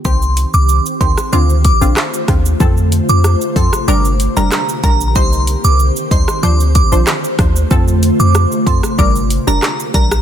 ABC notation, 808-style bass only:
X:1
M:4/4
L:1/16
Q:1/4=94
K:Cdor
V:1 name="808-style bass" clef=bass
C,,3 C,,2 z D,, z D,,3 B,,, z2 E,,2 | F,,3 F,,2 z F,, z G,,,3 F,,, z2 B,,,2 | C,,3 C,,2 z D,, z D,,3 B,,, z2 E,,2 | F,,3 F,,2 z F,, z G,,,3 F,,, z2 B,,,2 |]